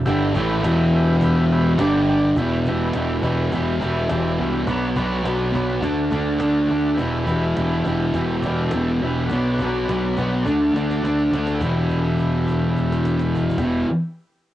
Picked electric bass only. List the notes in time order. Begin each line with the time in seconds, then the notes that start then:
0.06 G1
0.36 A1
0.64 E1
1.80 G1
2.36 E1
2.95 E1
3.22 E1
3.52 E1
4.11 E1
4.40 C2
4.67 B1
4.96 B1
5.25 B1
5.54 B1
5.82 D2
6.11 D2
6.40 D2
6.70 D2
6.98 E1
7.59 E1
7.85 E1
8.13 E1
8.73 E1
9.02 E1
9.30 B1
9.59 B1
9.89 B1
10.17 B1
10.46 D2
10.73 D2
11.03 D2
11.32 D2
11.62 E1
13.58 E1